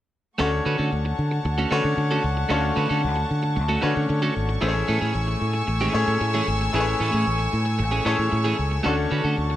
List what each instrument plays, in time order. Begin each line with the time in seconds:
0.38 fingered electric bass D2, clean electric guitar A3 C#4 F#4 A4, grand piano A3 C#4 D4 F#4 C#5, string section A3 F#5 A5 C#6
0.52 muted clean electric guitar stroke
0.65 fingered electric bass D3, clean electric guitar A3 C#4 F#4 B4
0.78 fingered electric bass D3, clean electric guitar A3 C#4 F#4 A4
0.91 fingered electric bass D2, muted clean electric guitar stroke
1.05 muted clean electric guitar stroke
1.19 fingered electric bass D3
1.31 muted clean electric guitar stroke
1.45 fingered electric bass D2, muted clean electric guitar stroke
1.58 clean electric guitar A3 C#4 F#4 A4
1.71 fingered electric bass D3, grand piano A3 C#4 D4 F#4 C#5, clean electric guitar A3 C#4 F#4 B4
1.85 fingered electric bass D3, muted clean electric guitar stroke
1.97 fingered electric bass D3, muted clean electric guitar stroke
2.11 clean electric guitar A3 C#4 F#4 A4
2.24 fingered electric bass C#2, muted clean electric guitar stroke
2.37 muted clean electric guitar stroke
2.49 fingered electric bass D2, clean electric guitar A3 C#4 F#4 A4, grand piano A3 C#4 D4 F4 C#5
2.57 grand piano F#4
2.63 muted clean electric guitar stroke
2.76 fingered electric bass D3, clean electric guitar A3 C#4 F#4 B4
2.89 fingered electric bass D3, clean electric guitar A3 C#4 F#4 A4
3.02 fingered electric bass D2, muted clean electric guitar stroke
3.16 muted clean electric guitar stroke
3.31 fingered electric bass D3
3.43 muted clean electric guitar stroke
3.56 fingered electric bass D2, muted clean electric guitar stroke
3.68 clean electric guitar A3 C#4 F#4 A4
3.81 fingered electric bass D3, clean electric guitar A3 C#4 F#4 B4, grand piano A3 C#4 D4 F#4 C#5
3.96 fingered electric bass D3, muted clean electric guitar stroke
4.09 fingered electric bass D3, muted clean electric guitar stroke
4.22 clean electric guitar A3 C#4 F#4 A4
4.35 fingered electric bass G#1, muted clean electric guitar stroke
4.49 muted clean electric guitar stroke
4.61 fingered electric bass A1, clean electric guitar E3 A3 C#4 G#4, grand piano A3 C#4 E4 G#4 C5, string section G#5 E6
4.68 grand piano C#5
4.74 muted clean electric guitar stroke
4.88 fingered electric bass A2, clean electric guitar E3 A3 C#4 A4
5.01 fingered electric bass A2, clean electric guitar E3 A3 C#4 G#4
5.14 fingered electric bass A1, muted clean electric guitar stroke
5.27 muted clean electric guitar stroke
5.41 fingered electric bass A2
5.54 muted clean electric guitar stroke
5.67 fingered electric bass A1, muted clean electric guitar stroke
5.81 clean electric guitar E3 A3 C#4 G#4
5.93 fingered electric bass A2, grand piano A3 C#4 E4 G#4 C#5
6.08 fingered electric bass A2, muted clean electric guitar stroke
6.21 fingered electric bass A2, muted clean electric guitar stroke
6.34 clean electric guitar E3 A3 C#4 G#4
6.48 fingered electric bass G#1, muted clean electric guitar stroke
6.61 muted clean electric guitar stroke
6.73 fingered electric bass A1, clean electric guitar E3 A3 C#4 G#4, grand piano A3 C#4 E4 G#4 B4
6.80 grand piano C#5
6.87 muted clean electric guitar stroke
7.00 fingered electric bass A2, clean electric guitar E3 A3 C#4 A4
7.12 fingered electric bass A2, clean electric guitar E3 A3 C#4 G#4
7.26 fingered electric bass A1, muted clean electric guitar stroke
7.38 muted clean electric guitar stroke
7.53 fingered electric bass A2
7.65 muted clean electric guitar stroke
7.79 fingered electric bass A1, muted clean electric guitar stroke
7.91 clean electric guitar E3 A3 C#4 G#4
8.05 fingered electric bass A2, clean electric guitar E3 A3 C#4 A4, grand piano A3 C#4 E4 G#4 C#5
8.18 fingered electric bass A2, muted clean electric guitar stroke
8.32 fingered electric bass A2, muted clean electric guitar stroke
8.44 clean electric guitar E3 A3 C#4 G#4
8.58 fingered electric bass C#2, muted clean electric guitar stroke
8.71 muted clean electric guitar stroke
8.83 fingered electric bass D2, clean electric guitar A3 C#4 F#4 A4, grand piano A3 C#4 D4 F#4 C#5, string section F#5 A5
8.97 muted clean electric guitar stroke
9.11 fingered electric bass D3, clean electric guitar A3 C#4 F#4 B4
9.24 fingered electric bass D3, clean electric guitar A3 C#4 F#4 A4
9.37 fingered electric bass D2, muted clean electric guitar stroke
9.50 muted clean electric guitar stroke